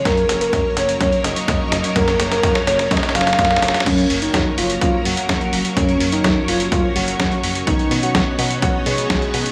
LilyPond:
<<
  \new Staff \with { instrumentName = "Soft synth lead" } { \time 4/4 \key ges \major \tempo 4 = 126 bes'8 r16 bes'8 r16 des''16 r16 des''16 r16 ees''4~ ees''16 r16 | bes'8 r16 bes'8 r16 des''16 r16 ees''16 r16 f''4~ f''16 r16 | des'8 r16 ees'8 r16 f'16 r16 f'16 r16 ges'4~ ges'16 r16 | des'8 r16 ees'8 r16 f'16 r16 f'16 r16 ges'4~ ges'16 r16 |
dis'8 r16 fis'8 r16 fis'16 r16 fis'16 r16 aes'4~ aes'16 r16 | }
  \new Staff \with { instrumentName = "String machine" } { \time 4/4 \key ges \major << { des''1~ | des''1 | des''1~ | des''1~ |
des''1 | } \\ { <ges bes des' bes'>1~ | <ges bes des' bes'>1 | <ges bes des' bes'>1~ | <ges bes des' bes'>1 |
<b dis' fis'>1 | } >> }
  \new Staff \with { instrumentName = "Analog synth bass" } { \clef bass \time 4/4 \key ges \major ges,8 ges,,8 ges,8 ges,,8 ges,8 ges,,8 ges,8 ges,,8 | ges,8 ges,,8 ges,8 ges,,8 ges,8 ges,,8 ges,8 ges,,8 | ges,8 ges,,8 ges,8 ges,,8 ges,8 ges,,8 ges,8 ges,,8 | ges,8 ges,,8 ges,8 ges,,8 ges,8 ges,,8 ges,8 ges,,8 |
b,,8 b,8 b,,8 b,8 b,,8 b,8 b,,8 b,8 | }
  \new DrumStaff \with { instrumentName = "Drums" } \drummode { \time 4/4 <hh bd sn>16 hh16 <hh sn>16 hh16 <hh bd sn>8 <hh sn>16 hh16 <hh bd sn>16 hh16 <hh sn>16 hh16 <hh bd sn>8 <hh sn>16 hh16 | <hh bd sn>16 <hh sn>16 <hh sn>16 <hh sn>16 <hh bd sn>16 sn16 <hh sn>16 <hh sn>16 <hh bd sn>32 sn32 <hh sn>32 sn32 <hh sn>32 sn32 <hh sn>32 sn32 <hh bd sn>32 sn32 sn32 sn32 <hh sn>32 sn32 <hh sn>32 sn32 | <cymc hh bd>16 hh16 hho16 hh16 <hh bd sn>8 hho16 hh16 <hh bd>8 hho16 hh16 <hh bd sn>16 hh16 hho16 hh16 | <hh bd>16 hh16 hho16 hh16 <hh bd sn>8 hho16 hh16 <hh bd>8 hho16 hh16 <hh bd sn>16 hh16 hho16 hh16 |
<hh bd>16 hh16 hho16 hh16 <hh bd sn>8 hho16 hh16 <hh bd>8 hho16 hh16 <hh bd sn>16 hh16 hho16 hh16 | }
>>